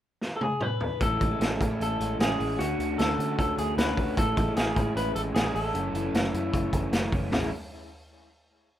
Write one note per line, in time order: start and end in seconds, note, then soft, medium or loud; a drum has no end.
0.21 snare medium
0.36 0.41 A4 medium
0.41 0.62 G#4 medium
0.41 high tom medium
0.61 1.02 B4 loud
0.61 mid tom medium
0.81 floor tom medium
1.00 1.17 A1 loud
1.00 1.30 A2 medium
1.00 2.60 A2 medium
1.00 1.31 E3 medium
1.00 1.31 G#3 medium
1.00 1.30 C#4 medium
1.00 1.29 E4 medium
1.00 1.81 A4 medium
1.00 kick loud
1.00 closed hi-hat medium
1.21 1.37 A1 medium
1.21 1.99 G#3 medium
1.21 kick medium
1.21 closed hi-hat medium
1.30 1.62 G#3 soft
1.30 1.61 C#4 soft
1.30 1.60 E4 medium
1.40 1.56 A1 medium
1.40 1.80 C#4 soft
1.40 snare medium
1.40 closed hi-hat medium
1.60 1.77 A2 medium
1.60 2.18 E3 medium
1.60 2.20 C#4 medium
1.60 1.71 D4 medium
1.60 2.21 E4 medium
1.60 kick medium
1.60 closed hi-hat medium
1.71 2.64 E4 soft
1.80 1.97 A1 medium
1.80 2.20 C#4 medium
1.80 2.20 A4 medium
1.80 closed hi-hat medium
2.00 2.16 A1 medium
2.00 2.39 G#3 medium
2.00 closed hi-hat medium
2.19 2.36 A1 medium
2.19 2.38 E3 soft
2.19 2.39 G#3 medium
2.19 2.99 C#4 medium
2.19 2.39 C#4 medium
2.19 2.40 E4 medium
2.19 2.61 G#4 medium
2.19 snare loud
2.19 closed hi-hat medium
2.39 2.56 A1 medium
2.39 2.59 E3 medium
2.39 2.60 G#3 medium
2.39 2.64 G#3 medium
2.39 2.59 C#4 soft
2.39 2.60 E4 medium
2.39 open hi-hat medium
2.59 2.75 D2 medium
2.59 2.89 D3 medium
2.59 4.17 D3 medium
2.59 2.89 A3 medium
2.59 2.89 C#4 medium
2.59 3.00 F#4 medium
2.59 2.88 F#4 medium
2.59 closed hi-hat medium
2.79 2.95 D2 medium
2.79 3.58 A3 soft
2.79 closed hi-hat medium
2.89 3.18 A3 soft
2.89 3.19 C#4 medium
2.89 3.19 F#4 medium
2.98 3.15 D2 medium
2.98 3.38 C#4 soft
2.98 3.38 A4 medium
2.98 snare medium
2.98 closed hi-hat medium
3.19 3.76 D3 medium
3.19 3.35 D3 medium
3.19 3.78 A3 medium
3.19 3.79 C#4 medium
3.19 4.21 F#4 medium
3.19 3.79 F#4 medium
3.19 closed hi-hat medium
3.39 3.55 D2 medium
3.39 3.78 C#4 soft
3.39 3.57 A4 medium
3.39 kick medium
3.39 closed hi-hat medium
3.58 3.74 D2 medium
3.58 3.97 A3 medium
3.58 3.77 G#4 medium
3.58 closed hi-hat medium
3.77 3.94 D2 medium
3.77 3.96 D3 medium
3.77 3.98 A3 medium
3.77 4.56 C#4 medium
3.77 3.98 C#4 medium
3.77 3.99 F#4 medium
3.77 4.18 B4 medium
3.77 snare loud
3.77 closed hi-hat medium
3.97 4.13 D2 medium
3.97 4.17 D3 medium
3.97 4.36 A3 medium
3.97 4.17 A3 medium
3.97 4.17 C#4 medium
3.97 4.18 F#4 medium
3.97 kick medium
3.97 open hi-hat soft
4.16 4.33 A1 medium
4.16 4.46 A2 medium
4.16 5.74 A2 medium
4.16 4.47 E3 medium
4.16 4.47 G#3 medium
4.16 4.47 C#4 medium
4.16 4.45 E4 medium
4.16 4.56 A4 medium
4.16 kick loud
4.16 closed hi-hat medium
4.37 4.53 A1 medium
4.37 5.14 G#3 medium
4.37 kick medium
4.37 closed hi-hat medium
4.46 4.75 G#3 soft
4.46 4.76 C#4 medium
4.46 4.76 E4 medium
4.56 4.73 A1 medium
4.56 4.96 C#4 medium
4.56 4.93 G#4 medium
4.56 snare medium
4.56 closed hi-hat medium
4.75 4.93 A2 medium
4.75 5.33 E3 medium
4.75 5.34 G#3 medium
4.75 5.35 C#4 medium
4.75 6.34 E4 medium
4.75 5.36 E4 medium
4.75 kick medium
4.75 closed hi-hat medium
4.96 5.12 A1 medium
4.96 5.35 C#4 medium
4.96 5.15 B4 medium
4.96 closed hi-hat medium
5.15 5.32 A1 medium
5.15 5.54 G#3 medium
5.15 5.21 A4 medium
5.15 closed hi-hat medium
5.34 5.51 A1 medium
5.34 5.52 E3 soft
5.34 5.54 G#3 medium
5.34 5.46 B3 medium
5.34 5.55 C#4 medium
5.34 5.56 E4 medium
5.34 5.55 G#4 medium
5.34 snare loud
5.34 closed hi-hat medium
5.46 5.79 C#4 soft
5.54 5.71 A1 medium
5.54 5.74 E3 medium
5.54 5.74 G#3 medium
5.54 5.79 G#3 medium
5.54 5.75 C#4 soft
5.54 5.75 E4 medium
5.54 6.89 A4 medium
5.54 open hi-hat medium
5.73 5.90 F#1 loud
5.73 6.04 F#2 medium
5.73 7.31 F#2 medium
5.73 6.04 C#3 medium
5.73 6.04 E3 medium
5.73 6.03 A3 medium
5.73 6.02 C#4 medium
5.73 closed hi-hat medium
5.93 6.10 F#1 medium
5.93 6.73 E3 medium
5.93 closed hi-hat medium
6.03 6.32 E3 soft
6.03 6.33 A3 medium
6.03 6.33 C#4 medium
6.14 6.30 F#1 medium
6.14 6.54 A3 medium
6.14 snare loud
6.14 closed hi-hat medium
6.32 6.50 F#2 medium
6.32 6.91 C#3 medium
6.32 6.93 E3 medium
6.32 6.94 A3 medium
6.32 6.95 C#4 medium
6.32 7.34 E4 medium
6.32 closed hi-hat medium
6.54 6.70 F#1 loud
6.54 6.93 A3 medium
6.54 kick medium
6.54 closed hi-hat medium
6.73 6.89 F#1 loud
6.73 7.12 E3 medium
6.73 kick medium
6.73 closed hi-hat medium
6.92 7.09 F#1 medium
6.92 7.10 C#3 medium
6.92 7.11 E3 medium
6.92 7.33 A3 medium
6.92 7.12 A3 medium
6.92 7.13 C#4 medium
6.92 snare loud
6.92 closed hi-hat medium
7.12 7.29 F#1 medium
7.12 7.32 C#3 medium
7.12 7.31 E3 medium
7.12 7.33 E3 soft
7.12 7.33 A3 medium
7.12 7.32 C#4 medium
7.12 kick medium
7.12 open hi-hat soft
7.32 7.50 A1 medium
7.32 7.48 A2 medium
7.32 7.48 E3 medium
7.32 7.48 G#3 medium
7.32 7.49 C#4 medium
7.32 7.49 E4 medium
7.32 snare medium
7.32 floor tom medium
7.32 open hi-hat medium